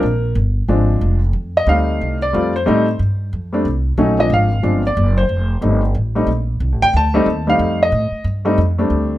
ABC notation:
X:1
M:4/4
L:1/8
Q:"Swing" 1/4=183
K:Fmix
V:1 name="Grand piano"
B2 z6 | z e f3 d2 c- | c2 z6 | z e f3 d2 c- |
c2 z6 | z g a3 f2 e- | e2 z6 |]
V:2 name="Grand piano"
z4 [F,_A,CD]3 z | z2 [G,A,CE]3 z [G,A,CF] z | [G,A,CE] z4 [G,A,CD] z2 | [_G,A,_DE] [F,_A,C=D]2 z [F,A,CD] z3 |
z2 [G,A,CE] z2 [G,A,CE] z2 | z3 [G,A,CE] z [G,A,CE]3 | z3 [G,A,CE] z [G,A,CD]3 |]
V:3 name="Upright bass" clef=bass
B,,,2 G,,,2 _A,,,2 F,,,2 | F,,2 D,,2 C,,2 F,,2 | A,,2 G,,2 F,,2 C,,2 | B,,,2 _A,,,2 G,,,2 _G,,,2 |
F,,,2 G,,,2 A,,,2 B,,,2 | (3C,, A,,, F,,, D,,2 E,,2 F,,2 | A,, z G,,2 F,,2 D,,2 |]